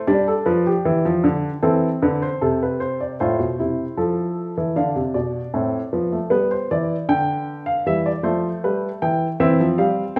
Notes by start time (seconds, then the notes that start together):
0.07 G3 D4 D5
0.28 A4
0.46 F3 B4
0.67 G4
0.85 E3
1.05 F3
1.24 D3
1.62 E3 C4 A4
2.02 D3 B4
2.22 C5
2.41 C3 A4
2.63 B4
2.80 C5
3.01 D5
3.20 A2 F4 C5
3.39 B2
3.59 C3 E4
3.97 F3 A4
4.57 E3
4.76 D3 D4 F5
4.96 C3
5.14 B2 D5
5.54 A2 C4
5.93 F3 B3
6.12 A3
6.30 G3 B3 B4
6.51 C5
6.71 E3 D5
7.09 D3 G5
7.66 F5
7.86 E3 G3 E5
8.06 D5
8.23 F3 A3 C5
8.64 G3 B4
9.02 E3 G5
9.40 E3 C4 E5
9.60 F3
9.78 G3 F5
10.16 C4